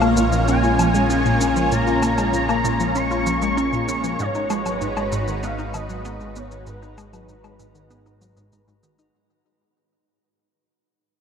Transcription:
0.00 4.16 A#1 medium
0.00 9.15 G#3 medium
0.00 4.15 A#3 medium
0.00 0.14 A#3 loud
0.00 4.15 C#4 medium
0.00 4.15 F4 medium
0.00 4.15 C#5 medium
0.00 0.44 F5 loud
0.00 9.15 A#5 medium
0.00 low woodblock medium
0.00 shaker soft
0.17 0.29 A#2 loud
0.17 shaker medium
0.32 0.45 F3 medium
0.32 shaker medium
0.48 0.56 C#4 medium
0.48 1.74 G#5 loud
0.48 shaker medium
0.63 0.68 F4 medium
0.63 shaker soft
0.79 0.87 F3 medium
0.79 low woodblock medium
0.79 shaker medium
0.94 1.07 G#3 medium
0.94 shaker medium
1.10 1.18 C#4 loud
1.10 shaker medium
1.25 1.38 A#2 medium
1.25 shaker soft
1.41 1.49 C#4 medium
1.41 shaker medium
1.56 1.69 F3 medium
1.56 shaker medium
1.72 1.80 A#2 medium
1.72 2.98 A#5 loud
1.72 shaker soft
1.87 1.92 F4 medium
1.87 shaker soft
2.02 2.11 A#3 loud
2.02 low woodblock medium
2.02 shaker medium
2.18 2.30 G#3 medium
2.18 low woodblock medium
2.18 shaker medium
2.33 2.38 A#2 medium
2.33 shaker medium
2.49 2.61 A#3 loud
2.49 low woodblock medium
2.49 shaker soft
2.64 2.77 A#2 loud
2.64 shaker medium
2.80 2.92 F3 medium
2.80 shaker medium
2.95 3.04 C#4 medium
2.95 4.19 C#6 loud
2.95 shaker soft
3.11 3.16 F4 medium
3.11 shaker soft
3.26 3.35 F3 medium
3.26 shaker medium
3.42 3.54 G#3 medium
3.42 shaker soft
3.57 3.66 C#4 loud
3.57 shaker medium
3.73 3.85 A#2 medium
3.73 shaker soft
3.88 3.97 C#4 medium
3.88 shaker medium
4.04 4.16 F3 medium
4.04 shaker medium
4.19 4.28 G#2 medium
4.19 9.10 G#3 medium
4.19 9.10 D#4 medium
4.19 9.10 F#4 medium
4.19 9.10 B4 medium
4.19 5.44 C#5 loud
4.19 shaker medium
4.35 4.40 D#4 medium
4.35 shaker soft
4.50 4.58 G#3 loud
4.50 low woodblock medium
4.50 shaker medium
4.66 4.78 F#3 medium
4.66 low woodblock medium
4.66 shaker medium
4.81 4.86 G#2 medium
4.81 shaker soft
4.97 5.09 G#3 loud
4.97 low woodblock medium
4.97 shaker soft
5.12 5.24 G#2 loud
5.12 shaker medium
5.28 5.40 D#3 medium
5.28 shaker medium
5.43 5.51 B3 medium
5.43 5.75 F5 loud
5.43 shaker soft
5.59 5.63 D#4 medium
5.59 shaker soft
5.74 5.82 D#3 medium
5.74 6.38 D#5 loud
5.74 low woodblock medium
5.74 shaker medium
5.89 6.02 F#3 medium
5.89 shaker medium
6.05 6.13 B3 loud
6.05 shaker medium
6.20 6.33 G#2 medium
6.20 shaker soft
6.36 6.44 B3 medium
6.36 6.66 C#5 medium
6.36 shaker medium
6.51 6.64 D#3 medium
6.51 shaker medium
6.67 6.75 G#2 medium
6.67 8.79 B4 loud
6.67 shaker medium
6.82 6.87 D#4 medium
6.82 shaker soft
6.98 7.06 G#3 loud
6.98 low woodblock medium
6.98 shaker medium
7.13 7.25 F#3 medium
7.13 low woodblock medium
7.13 shaker medium
7.29 7.34 G#2 medium
7.29 shaker medium
7.44 7.56 G#3 loud
7.44 low woodblock medium
7.44 shaker soft
7.59 7.72 G#2 loud
7.59 shaker medium
7.75 7.87 D#3 medium
7.75 shaker medium
7.90 7.99 B3 medium
7.90 shaker medium
8.06 8.11 D#4 medium
8.06 shaker soft
8.21 8.34 F#3 medium
8.21 shaker medium
8.37 8.49 G#2 loud
8.37 shaker soft
8.52 8.60 G#2 medium
8.52 shaker medium
8.68 8.73 G#2 loud
8.68 shaker soft
8.83 8.91 D#3 medium
8.83 shaker medium
8.99 9.07 D#4 medium
8.99 shaker medium

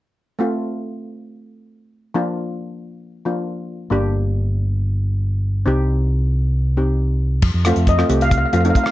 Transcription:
0.39 2.11 A3 medium
0.39 2.12 C4 soft
0.39 2.12 F4 medium
2.14 3.23 F3 medium
2.14 3.23 A#3 medium
2.14 3.23 D4 medium
2.14 3.23 F4 medium
3.25 3.91 F3 soft
3.25 3.89 A#3 soft
3.25 3.90 D4 soft
3.25 3.92 F4 soft
3.90 5.64 G1 medium
3.90 5.64 A#3 medium
3.90 5.64 D4 medium
3.90 5.64 G4 medium
5.66 7.40 C2 medium
5.66 6.75 C4 medium
5.66 6.75 D#4 medium
5.66 6.76 G4 medium
6.77 7.43 C4 soft
6.77 7.44 D#4 soft
6.77 7.44 G4 soft
7.42 7.52 F2 medium
7.42 kick medium
7.42 crash medium
7.54 7.72 F2 medium
7.65 7.86 A3 medium
7.65 7.86 C4 medium
7.65 7.86 F4 medium
7.65 cross-stick medium
7.65 closed hi-hat medium
7.76 8.02 F2 medium
7.76 closed hi-hat medium
7.87 8.23 D#5 medium
7.87 kick medium
7.87 closed hi-hat medium
7.98 8.05 A3 medium
7.98 8.05 C4 medium
7.98 8.05 F4 medium
7.98 cross-stick medium
8.09 8.44 C2 medium
8.09 8.36 A3 medium
8.09 8.36 C4 medium
8.09 8.36 G4 medium
8.09 closed hi-hat medium
8.21 8.28 F5 medium
8.21 closed hi-hat medium
8.30 8.37 F5 medium
8.30 kick medium
8.30 closed hi-hat medium
8.38 8.44 F5 medium
8.46 8.52 F5 soft
8.53 8.71 F2 medium
8.53 8.60 A3 medium
8.53 8.60 C4 medium
8.53 8.60 F4 medium
8.53 8.59 F5 medium
8.53 closed hi-hat medium
8.61 8.85 A3 medium
8.61 8.68 F5 soft
8.65 8.85 C4 medium
8.65 8.85 D#4 medium
8.65 closed hi-hat medium
8.70 8.76 F5 soft
8.75 8.83 F5 soft
8.75 kick medium
8.75 closed hi-hat medium
8.84 8.90 F5 medium
8.84 cross-stick medium

